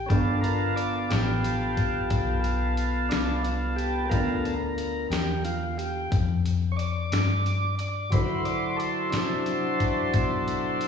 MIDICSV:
0, 0, Header, 1, 6, 480
1, 0, Start_track
1, 0, Tempo, 669643
1, 69, Time_signature, 12, 3, 24, 8
1, 7797, End_track
2, 0, Start_track
2, 0, Title_t, "Horn section"
2, 0, Program_c, 0, 61
2, 5829, Note_on_c, 0, 74, 67
2, 5834, Note_on_c, 0, 72, 71
2, 5835, Note_on_c, 0, 66, 73
2, 5835, Note_on_c, 0, 78, 80
2, 7797, Note_off_c, 0, 66, 0
2, 7797, Note_off_c, 0, 72, 0
2, 7797, Note_off_c, 0, 74, 0
2, 7797, Note_off_c, 0, 78, 0
2, 7797, End_track
3, 0, Start_track
3, 0, Title_t, "Tonewheel organ"
3, 0, Program_c, 1, 16
3, 44, Note_on_c, 1, 61, 56
3, 59, Note_on_c, 1, 59, 43
3, 62, Note_on_c, 1, 69, 50
3, 70, Note_on_c, 1, 62, 76
3, 72, Note_off_c, 1, 61, 0
3, 72, Note_on_c, 1, 65, 55
3, 295, Note_on_c, 1, 70, 85
3, 302, Note_off_c, 1, 62, 0
3, 535, Note_off_c, 1, 70, 0
3, 544, Note_on_c, 1, 74, 85
3, 779, Note_off_c, 1, 74, 0
3, 786, Note_on_c, 1, 67, 80
3, 1719, Note_off_c, 1, 67, 0
3, 2215, Note_on_c, 1, 62, 93
3, 2455, Note_off_c, 1, 62, 0
3, 2457, Note_off_c, 1, 65, 0
3, 2466, Note_on_c, 1, 65, 76
3, 2697, Note_on_c, 1, 67, 89
3, 2700, Note_off_c, 1, 65, 0
3, 2900, Note_off_c, 1, 69, 0
3, 2908, Note_on_c, 1, 69, 57
3, 2915, Note_off_c, 1, 59, 0
3, 2934, Note_on_c, 1, 59, 46
3, 2935, Note_off_c, 1, 67, 0
3, 2935, Note_on_c, 1, 70, 79
3, 2937, Note_on_c, 1, 65, 58
3, 3255, Note_off_c, 1, 69, 0
3, 3260, Note_off_c, 1, 59, 0
3, 3261, Note_off_c, 1, 65, 0
3, 3640, Note_off_c, 1, 70, 0
3, 3663, Note_on_c, 1, 67, 79
3, 3899, Note_off_c, 1, 67, 0
3, 3904, Note_on_c, 1, 65, 79
3, 4139, Note_off_c, 1, 65, 0
3, 4143, Note_on_c, 1, 67, 86
3, 4378, Note_off_c, 1, 67, 0
3, 4815, Note_on_c, 1, 73, 63
3, 4849, Note_off_c, 1, 73, 0
3, 4850, Note_on_c, 1, 74, 90
3, 5557, Note_off_c, 1, 74, 0
3, 5592, Note_on_c, 1, 74, 72
3, 5807, Note_on_c, 1, 54, 49
3, 5817, Note_on_c, 1, 72, 46
3, 5822, Note_on_c, 1, 64, 52
3, 5823, Note_off_c, 1, 74, 0
3, 5829, Note_on_c, 1, 71, 83
3, 6058, Note_on_c, 1, 74, 74
3, 6061, Note_off_c, 1, 71, 0
3, 6284, Note_on_c, 1, 69, 72
3, 6296, Note_off_c, 1, 74, 0
3, 6515, Note_off_c, 1, 69, 0
3, 6521, Note_on_c, 1, 62, 81
3, 6524, Note_on_c, 1, 69, 88
3, 7797, Note_off_c, 1, 54, 0
3, 7797, Note_off_c, 1, 62, 0
3, 7797, Note_off_c, 1, 64, 0
3, 7797, Note_off_c, 1, 69, 0
3, 7797, Note_off_c, 1, 72, 0
3, 7797, End_track
4, 0, Start_track
4, 0, Title_t, "Grand piano"
4, 0, Program_c, 2, 0
4, 68, Note_on_c, 2, 59, 50
4, 75, Note_on_c, 2, 69, 55
4, 76, Note_on_c, 2, 62, 45
4, 76, Note_on_c, 2, 65, 46
4, 2920, Note_off_c, 2, 59, 0
4, 2923, Note_off_c, 2, 62, 0
4, 2923, Note_off_c, 2, 65, 0
4, 2923, Note_off_c, 2, 69, 0
4, 2953, Note_on_c, 2, 59, 51
4, 2953, Note_on_c, 2, 65, 47
4, 2956, Note_on_c, 2, 69, 55
4, 2957, Note_on_c, 2, 62, 45
4, 5802, Note_off_c, 2, 59, 0
4, 5802, Note_off_c, 2, 65, 0
4, 5803, Note_off_c, 2, 69, 0
4, 5804, Note_off_c, 2, 62, 0
4, 5824, Note_on_c, 2, 72, 51
4, 5829, Note_on_c, 2, 64, 46
4, 5831, Note_on_c, 2, 66, 45
4, 5831, Note_on_c, 2, 69, 55
4, 7797, Note_off_c, 2, 64, 0
4, 7797, Note_off_c, 2, 66, 0
4, 7797, Note_off_c, 2, 69, 0
4, 7797, Note_off_c, 2, 72, 0
4, 7797, End_track
5, 0, Start_track
5, 0, Title_t, "Fingered electric bass"
5, 0, Program_c, 3, 33
5, 71, Note_on_c, 3, 31, 78
5, 768, Note_off_c, 3, 31, 0
5, 796, Note_on_c, 3, 33, 88
5, 1491, Note_off_c, 3, 33, 0
5, 1508, Note_on_c, 3, 35, 82
5, 2206, Note_off_c, 3, 35, 0
5, 2235, Note_on_c, 3, 36, 88
5, 2930, Note_off_c, 3, 36, 0
5, 2951, Note_on_c, 3, 38, 81
5, 3648, Note_off_c, 3, 38, 0
5, 3656, Note_on_c, 3, 40, 88
5, 4360, Note_off_c, 3, 40, 0
5, 4383, Note_on_c, 3, 41, 81
5, 5084, Note_off_c, 3, 41, 0
5, 5105, Note_on_c, 3, 43, 84
5, 5805, Note_off_c, 3, 43, 0
5, 5817, Note_on_c, 3, 50, 75
5, 6521, Note_off_c, 3, 50, 0
5, 6544, Note_on_c, 3, 48, 79
5, 7245, Note_off_c, 3, 48, 0
5, 7268, Note_on_c, 3, 47, 83
5, 7797, Note_off_c, 3, 47, 0
5, 7797, End_track
6, 0, Start_track
6, 0, Title_t, "Drums"
6, 72, Note_on_c, 9, 36, 94
6, 73, Note_on_c, 9, 42, 72
6, 144, Note_off_c, 9, 36, 0
6, 145, Note_off_c, 9, 42, 0
6, 314, Note_on_c, 9, 42, 57
6, 386, Note_off_c, 9, 42, 0
6, 554, Note_on_c, 9, 42, 60
6, 626, Note_off_c, 9, 42, 0
6, 792, Note_on_c, 9, 42, 75
6, 800, Note_on_c, 9, 38, 91
6, 864, Note_off_c, 9, 42, 0
6, 872, Note_off_c, 9, 38, 0
6, 1035, Note_on_c, 9, 42, 60
6, 1107, Note_off_c, 9, 42, 0
6, 1271, Note_on_c, 9, 42, 58
6, 1272, Note_on_c, 9, 36, 72
6, 1343, Note_off_c, 9, 36, 0
6, 1343, Note_off_c, 9, 42, 0
6, 1508, Note_on_c, 9, 42, 73
6, 1510, Note_on_c, 9, 36, 101
6, 1580, Note_off_c, 9, 42, 0
6, 1582, Note_off_c, 9, 36, 0
6, 1749, Note_on_c, 9, 42, 57
6, 1821, Note_off_c, 9, 42, 0
6, 1988, Note_on_c, 9, 42, 53
6, 2060, Note_off_c, 9, 42, 0
6, 2229, Note_on_c, 9, 42, 76
6, 2237, Note_on_c, 9, 38, 107
6, 2300, Note_off_c, 9, 42, 0
6, 2308, Note_off_c, 9, 38, 0
6, 2469, Note_on_c, 9, 42, 52
6, 2541, Note_off_c, 9, 42, 0
6, 2713, Note_on_c, 9, 42, 55
6, 2785, Note_off_c, 9, 42, 0
6, 2949, Note_on_c, 9, 36, 93
6, 2951, Note_on_c, 9, 42, 70
6, 3021, Note_off_c, 9, 36, 0
6, 3023, Note_off_c, 9, 42, 0
6, 3193, Note_on_c, 9, 42, 49
6, 3264, Note_off_c, 9, 42, 0
6, 3426, Note_on_c, 9, 42, 61
6, 3498, Note_off_c, 9, 42, 0
6, 3668, Note_on_c, 9, 42, 75
6, 3675, Note_on_c, 9, 38, 96
6, 3739, Note_off_c, 9, 42, 0
6, 3747, Note_off_c, 9, 38, 0
6, 3904, Note_on_c, 9, 42, 61
6, 3976, Note_off_c, 9, 42, 0
6, 4150, Note_on_c, 9, 42, 59
6, 4221, Note_off_c, 9, 42, 0
6, 4386, Note_on_c, 9, 36, 99
6, 4386, Note_on_c, 9, 42, 76
6, 4457, Note_off_c, 9, 42, 0
6, 4458, Note_off_c, 9, 36, 0
6, 4627, Note_on_c, 9, 42, 55
6, 4699, Note_off_c, 9, 42, 0
6, 4868, Note_on_c, 9, 42, 55
6, 4939, Note_off_c, 9, 42, 0
6, 5105, Note_on_c, 9, 42, 85
6, 5113, Note_on_c, 9, 38, 99
6, 5177, Note_off_c, 9, 42, 0
6, 5185, Note_off_c, 9, 38, 0
6, 5348, Note_on_c, 9, 42, 55
6, 5419, Note_off_c, 9, 42, 0
6, 5583, Note_on_c, 9, 42, 57
6, 5654, Note_off_c, 9, 42, 0
6, 5820, Note_on_c, 9, 42, 73
6, 5823, Note_on_c, 9, 36, 94
6, 5892, Note_off_c, 9, 42, 0
6, 5895, Note_off_c, 9, 36, 0
6, 6059, Note_on_c, 9, 42, 50
6, 6131, Note_off_c, 9, 42, 0
6, 6306, Note_on_c, 9, 42, 54
6, 6378, Note_off_c, 9, 42, 0
6, 6540, Note_on_c, 9, 42, 70
6, 6548, Note_on_c, 9, 38, 95
6, 6612, Note_off_c, 9, 42, 0
6, 6620, Note_off_c, 9, 38, 0
6, 6782, Note_on_c, 9, 42, 55
6, 6854, Note_off_c, 9, 42, 0
6, 7027, Note_on_c, 9, 36, 73
6, 7027, Note_on_c, 9, 42, 59
6, 7098, Note_off_c, 9, 42, 0
6, 7099, Note_off_c, 9, 36, 0
6, 7266, Note_on_c, 9, 42, 74
6, 7268, Note_on_c, 9, 36, 101
6, 7338, Note_off_c, 9, 42, 0
6, 7340, Note_off_c, 9, 36, 0
6, 7510, Note_on_c, 9, 42, 55
6, 7582, Note_off_c, 9, 42, 0
6, 7747, Note_on_c, 9, 42, 55
6, 7797, Note_off_c, 9, 42, 0
6, 7797, End_track
0, 0, End_of_file